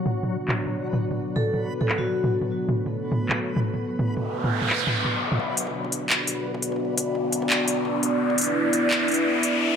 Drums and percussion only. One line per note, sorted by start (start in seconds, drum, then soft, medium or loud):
0.06 mid tom medium
0.23 mid tom soft
0.49 clap loud
0.49 mid tom medium
0.66 mid tom soft
0.93 mid tom medium
1.11 mid tom soft
1.36 mid tom medium
1.54 mid tom soft
1.81 mid tom medium
1.89 clap loud
1.99 mid tom soft
2.24 mid tom medium
2.41 mid tom soft
2.69 mid tom medium
2.86 mid tom soft
3.12 mid tom medium
3.29 clap loud
3.29 mid tom soft
3.56 mid tom medium
3.74 mid tom soft
3.99 mid tom medium
4.17 mid tom medium
4.44 mid tom medium
4.62 mid tom soft
4.69 clap loud
4.87 mid tom medium
5.05 mid tom medium
5.32 mid tom medium
5.40 mid tom medium
5.57 closed hi-hat medium
5.67 mid tom medium
5.84 mid tom soft
5.92 closed hi-hat medium
6.10 clap loud
6.10 mid tom medium
6.27 closed hi-hat medium
6.27 mid tom medium
6.54 mid tom medium
6.62 closed hi-hat medium
6.72 mid tom medium
6.76 mid tom soft
6.80 mid tom soft
6.85 mid tom soft
6.98 closed hi-hat medium
6.98 mid tom medium
7.15 mid tom soft
7.32 closed hi-hat medium
7.42 mid tom medium
7.50 clap loud
7.60 mid tom medium
7.68 closed hi-hat medium
7.85 mid tom medium
8.03 closed hi-hat medium
8.03 mid tom medium
8.30 mid tom medium
8.38 closed hi-hat medium
8.41 closed hi-hat medium
8.44 closed hi-hat medium
8.44 mid tom soft
8.73 closed hi-hat medium
8.73 mid tom medium
8.91 clap loud
8.91 mid tom medium
9.08 closed hi-hat soft
9.11 closed hi-hat soft
9.14 closed hi-hat medium
9.14 mid tom medium
9.35 mid tom medium
9.43 closed hi-hat medium
9.61 mid tom medium